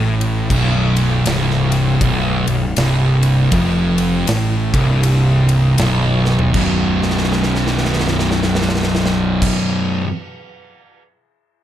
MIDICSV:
0, 0, Header, 1, 4, 480
1, 0, Start_track
1, 0, Tempo, 754717
1, 319, Time_signature, 4, 2, 24, 8
1, 7402, End_track
2, 0, Start_track
2, 0, Title_t, "Distorted electric guitar"
2, 0, Program_c, 0, 30
2, 0, Note_on_c, 0, 45, 103
2, 317, Note_off_c, 0, 45, 0
2, 326, Note_on_c, 0, 35, 113
2, 798, Note_off_c, 0, 35, 0
2, 803, Note_on_c, 0, 36, 108
2, 1277, Note_off_c, 0, 36, 0
2, 1283, Note_on_c, 0, 35, 116
2, 1567, Note_off_c, 0, 35, 0
2, 1577, Note_on_c, 0, 35, 74
2, 1726, Note_off_c, 0, 35, 0
2, 1768, Note_on_c, 0, 36, 100
2, 2237, Note_off_c, 0, 36, 0
2, 2240, Note_on_c, 0, 41, 112
2, 2717, Note_off_c, 0, 41, 0
2, 2725, Note_on_c, 0, 45, 105
2, 3009, Note_off_c, 0, 45, 0
2, 3015, Note_on_c, 0, 36, 105
2, 3678, Note_off_c, 0, 36, 0
2, 3685, Note_on_c, 0, 35, 103
2, 4149, Note_off_c, 0, 35, 0
2, 4156, Note_on_c, 0, 35, 105
2, 4167, Note_on_c, 0, 42, 104
2, 4185, Note_on_c, 0, 47, 116
2, 6382, Note_off_c, 0, 35, 0
2, 6389, Note_off_c, 0, 42, 0
2, 6389, Note_off_c, 0, 47, 0
2, 7402, End_track
3, 0, Start_track
3, 0, Title_t, "Fingered electric bass"
3, 0, Program_c, 1, 33
3, 0, Note_on_c, 1, 33, 102
3, 297, Note_off_c, 1, 33, 0
3, 317, Note_on_c, 1, 23, 107
3, 774, Note_off_c, 1, 23, 0
3, 800, Note_on_c, 1, 24, 87
3, 1256, Note_off_c, 1, 24, 0
3, 1276, Note_on_c, 1, 23, 95
3, 1552, Note_off_c, 1, 23, 0
3, 1573, Note_on_c, 1, 23, 82
3, 1748, Note_off_c, 1, 23, 0
3, 1760, Note_on_c, 1, 24, 104
3, 2217, Note_off_c, 1, 24, 0
3, 2239, Note_on_c, 1, 29, 111
3, 2697, Note_off_c, 1, 29, 0
3, 2715, Note_on_c, 1, 33, 97
3, 2992, Note_off_c, 1, 33, 0
3, 3013, Note_on_c, 1, 24, 93
3, 3657, Note_off_c, 1, 24, 0
3, 3681, Note_on_c, 1, 23, 98
3, 4137, Note_off_c, 1, 23, 0
3, 4160, Note_on_c, 1, 23, 100
3, 6033, Note_off_c, 1, 23, 0
3, 7402, End_track
4, 0, Start_track
4, 0, Title_t, "Drums"
4, 134, Note_on_c, 9, 51, 69
4, 197, Note_off_c, 9, 51, 0
4, 319, Note_on_c, 9, 36, 105
4, 321, Note_on_c, 9, 49, 95
4, 383, Note_off_c, 9, 36, 0
4, 384, Note_off_c, 9, 49, 0
4, 614, Note_on_c, 9, 51, 76
4, 677, Note_off_c, 9, 51, 0
4, 799, Note_on_c, 9, 51, 100
4, 809, Note_on_c, 9, 38, 112
4, 862, Note_off_c, 9, 51, 0
4, 873, Note_off_c, 9, 38, 0
4, 957, Note_on_c, 9, 38, 34
4, 1020, Note_off_c, 9, 38, 0
4, 1092, Note_on_c, 9, 51, 77
4, 1156, Note_off_c, 9, 51, 0
4, 1279, Note_on_c, 9, 36, 110
4, 1279, Note_on_c, 9, 51, 97
4, 1342, Note_off_c, 9, 36, 0
4, 1342, Note_off_c, 9, 51, 0
4, 1574, Note_on_c, 9, 51, 78
4, 1637, Note_off_c, 9, 51, 0
4, 1758, Note_on_c, 9, 51, 102
4, 1769, Note_on_c, 9, 38, 116
4, 1822, Note_off_c, 9, 51, 0
4, 1832, Note_off_c, 9, 38, 0
4, 2052, Note_on_c, 9, 51, 71
4, 2116, Note_off_c, 9, 51, 0
4, 2237, Note_on_c, 9, 51, 97
4, 2238, Note_on_c, 9, 36, 112
4, 2301, Note_off_c, 9, 51, 0
4, 2302, Note_off_c, 9, 36, 0
4, 2531, Note_on_c, 9, 51, 77
4, 2594, Note_off_c, 9, 51, 0
4, 2718, Note_on_c, 9, 51, 98
4, 2728, Note_on_c, 9, 38, 107
4, 2781, Note_off_c, 9, 51, 0
4, 2792, Note_off_c, 9, 38, 0
4, 3013, Note_on_c, 9, 36, 111
4, 3016, Note_on_c, 9, 51, 77
4, 3077, Note_off_c, 9, 36, 0
4, 3079, Note_off_c, 9, 51, 0
4, 3201, Note_on_c, 9, 51, 90
4, 3264, Note_off_c, 9, 51, 0
4, 3490, Note_on_c, 9, 51, 77
4, 3554, Note_off_c, 9, 51, 0
4, 3676, Note_on_c, 9, 51, 109
4, 3686, Note_on_c, 9, 38, 122
4, 3740, Note_off_c, 9, 51, 0
4, 3750, Note_off_c, 9, 38, 0
4, 3977, Note_on_c, 9, 38, 60
4, 4040, Note_off_c, 9, 38, 0
4, 4063, Note_on_c, 9, 43, 98
4, 4127, Note_off_c, 9, 43, 0
4, 4161, Note_on_c, 9, 36, 103
4, 4161, Note_on_c, 9, 57, 94
4, 4224, Note_off_c, 9, 57, 0
4, 4225, Note_off_c, 9, 36, 0
4, 4468, Note_on_c, 9, 38, 47
4, 4515, Note_off_c, 9, 38, 0
4, 4515, Note_on_c, 9, 38, 51
4, 4563, Note_off_c, 9, 38, 0
4, 4563, Note_on_c, 9, 38, 57
4, 4605, Note_off_c, 9, 38, 0
4, 4605, Note_on_c, 9, 38, 53
4, 4656, Note_off_c, 9, 38, 0
4, 4656, Note_on_c, 9, 38, 55
4, 4720, Note_off_c, 9, 38, 0
4, 4725, Note_on_c, 9, 38, 58
4, 4789, Note_off_c, 9, 38, 0
4, 4802, Note_on_c, 9, 38, 58
4, 4865, Note_off_c, 9, 38, 0
4, 4875, Note_on_c, 9, 38, 63
4, 4939, Note_off_c, 9, 38, 0
4, 4947, Note_on_c, 9, 38, 61
4, 4994, Note_off_c, 9, 38, 0
4, 4994, Note_on_c, 9, 38, 66
4, 5042, Note_off_c, 9, 38, 0
4, 5042, Note_on_c, 9, 38, 66
4, 5087, Note_off_c, 9, 38, 0
4, 5087, Note_on_c, 9, 38, 64
4, 5136, Note_off_c, 9, 38, 0
4, 5136, Note_on_c, 9, 38, 72
4, 5200, Note_off_c, 9, 38, 0
4, 5210, Note_on_c, 9, 38, 70
4, 5274, Note_off_c, 9, 38, 0
4, 5285, Note_on_c, 9, 38, 71
4, 5348, Note_off_c, 9, 38, 0
4, 5358, Note_on_c, 9, 38, 72
4, 5422, Note_off_c, 9, 38, 0
4, 5438, Note_on_c, 9, 38, 88
4, 5479, Note_off_c, 9, 38, 0
4, 5479, Note_on_c, 9, 38, 85
4, 5525, Note_off_c, 9, 38, 0
4, 5525, Note_on_c, 9, 38, 86
4, 5568, Note_off_c, 9, 38, 0
4, 5568, Note_on_c, 9, 38, 83
4, 5617, Note_off_c, 9, 38, 0
4, 5617, Note_on_c, 9, 38, 94
4, 5681, Note_off_c, 9, 38, 0
4, 5691, Note_on_c, 9, 38, 94
4, 5755, Note_off_c, 9, 38, 0
4, 5760, Note_on_c, 9, 38, 103
4, 5823, Note_off_c, 9, 38, 0
4, 5991, Note_on_c, 9, 36, 114
4, 5993, Note_on_c, 9, 57, 107
4, 6054, Note_off_c, 9, 36, 0
4, 6056, Note_off_c, 9, 57, 0
4, 7402, End_track
0, 0, End_of_file